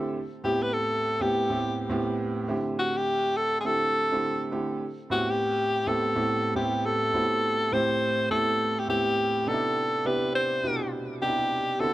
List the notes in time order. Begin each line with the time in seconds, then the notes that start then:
Already playing: D3 A3 C4 E4 G4
0.44 A2 B3 C4 E4 G4
0.62 B4
0.73 A4
1.20 A2 B3 C4 E4 G4
1.50 A2 B3 C4 E4 G4
1.89 A2 B3 C4 E4 G4
2.48 D3 A3 C4 E4 G4
2.79 F#4
2.97 G4
3.37 A4
3.60 D3 G#4
3.65 A3 C4 E4 G4 A4
4.12 D3 A3 C4 E4 G4
4.51 D3 A3 C4 E4 G4
5.10 A2 B3 C4 E4 F#4 G4
5.30 G4
5.86 A2 B3 C4 E4 G4 A4
6.15 A2 B3 C4 E4 G4
6.55 A2 B3 C4 E4 G4
6.85 A4
7.14 A2 B3 C4 E4 F#4
7.21 G4
7.72 A2 A3 C4 E4 G4 C5
8.30 A2 B3 C4 E4 G4 A4
8.79 G4
8.88 A2 B3 C4 E4 G4
9.47 C3 B3 D4 D#4 G4 A4
9.54 E4
10.05 C3 B3 D4 E4 G4 B4
10.35 C5
10.63 B2 C3 D4 E4 G4
11.21 C3 B3 D4 D#4 G4
11.29 E4
11.79 D3 B3 C4 E4 F#4 A4